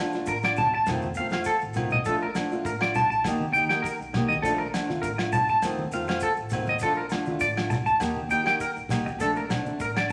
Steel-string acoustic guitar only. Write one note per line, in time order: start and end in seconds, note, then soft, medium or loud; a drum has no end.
0.00 0.13 F3 medium
0.00 0.14 A3 medium
0.00 0.14 D4 medium
0.00 0.14 F4 medium
0.15 0.33 A3 soft
0.15 0.32 D4 soft
0.15 0.31 F4 medium
0.44 0.61 D4 soft
0.44 0.60 F4 soft
0.88 1.06 D#3 medium
0.88 1.06 A3 medium
0.88 1.07 C4 medium
0.88 1.07 F4 medium
1.17 1.33 D#3 medium
1.17 1.33 A3 medium
1.17 1.33 C4 medium
1.17 1.31 F4 medium
1.33 1.51 A3 soft
1.33 1.50 C4 medium
1.33 1.49 F4 medium
1.74 1.94 D#3 medium
1.74 1.95 A3 medium
1.74 1.95 C4 medium
1.74 1.95 F4 medium
2.05 2.24 F3 medium
2.05 2.25 A3 medium
2.05 2.25 D4 medium
2.05 2.25 F4 medium
2.35 2.51 F3 medium
2.35 2.52 A3 medium
2.35 2.52 D4 medium
2.35 2.50 F4 medium
2.52 2.70 A3 soft
2.52 2.69 D4 soft
2.52 2.69 F4 medium
2.81 2.99 A3 soft
2.81 2.99 D4 soft
2.81 2.98 F4 medium
3.26 3.44 A#3 medium
3.26 3.45 D#4 medium
3.26 3.45 G4 medium
3.26 muted steel-string acoustic guitar stroke medium
3.54 3.70 D#3 medium
3.54 3.71 A#3 medium
3.54 3.70 D#4 medium
3.54 3.68 G4 medium
3.70 3.89 A#3 soft
3.70 3.88 D#4 medium
3.70 3.87 G4 medium
4.13 4.32 D#3 medium
4.13 4.33 A#3 medium
4.13 4.34 D#4 medium
4.13 4.34 G4 medium
4.42 4.62 F3 medium
4.42 4.62 A3 medium
4.42 4.63 D4 medium
4.42 4.63 F4 medium
4.73 4.89 F3 medium
4.73 4.90 A3 medium
4.73 4.90 D4 medium
4.73 4.88 F4 medium
4.89 5.08 A3 soft
4.89 5.07 D4 soft
4.89 5.06 F4 medium
5.18 5.37 A3 soft
5.18 5.37 D4 soft
5.18 5.36 F4 medium
5.63 5.82 D#3 medium
5.63 5.82 A3 medium
5.63 5.82 C4 medium
5.63 5.83 F4 medium
5.91 6.08 D#3 medium
5.91 6.09 A3 medium
5.91 6.09 C4 medium
5.91 6.08 F4 medium
6.09 6.27 A3 soft
6.09 6.26 C4 medium
6.09 6.26 F4 medium
6.51 6.70 D#3 medium
6.51 6.71 A3 medium
6.51 6.72 C4 medium
6.51 6.72 F4 medium
6.82 7.01 F3 medium
6.82 7.01 D4 medium
6.82 7.02 F4 medium
6.82 muted steel-string acoustic guitar stroke medium
7.11 7.28 F3 medium
7.11 7.28 A3 medium
7.11 7.28 D4 medium
7.11 7.26 F4 medium
7.27 7.46 A3 soft
7.27 7.45 D4 soft
7.27 7.45 F4 medium
7.56 7.75 A3 soft
7.56 7.75 D4 soft
7.56 7.74 F4 soft
7.99 8.19 D#3 medium
7.99 8.19 A#3 medium
7.99 8.20 D#4 medium
7.99 8.20 G4 medium
8.28 8.45 D#3 medium
8.28 8.46 A#3 medium
8.28 8.44 D#4 medium
8.28 8.43 G4 medium
8.44 8.64 A#3 soft
8.44 8.63 D#4 medium
8.44 8.62 G4 medium
8.89 9.09 D#3 medium
8.89 9.09 A#3 medium
8.89 9.10 D#4 medium
8.89 9.10 G4 medium
9.18 9.38 F3 medium
9.18 9.39 A3 medium
9.18 9.39 D4 medium
9.48 9.65 F3 medium
9.48 9.66 A3 medium
9.48 9.63 D4 medium
9.64 9.84 A3 soft
9.64 9.82 D4 medium
9.94 10.12 A3 soft
9.94 10.12 D4 soft